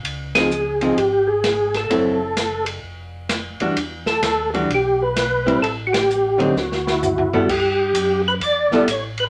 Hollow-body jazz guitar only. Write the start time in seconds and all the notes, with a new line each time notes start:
0.36 F3 C4 D#4
0.81 F3 C4 D#4
1.90 F#3 C4 E4 A4
3.61 E3 G3 D4 F#4
4.54 E3 G3 D4 F#4
5.46 G3 C4 E4
6.38 D3 F#3 C4 D#4
7.33 G3 B3 E4 A4
8.72 G3 B3 E4 A4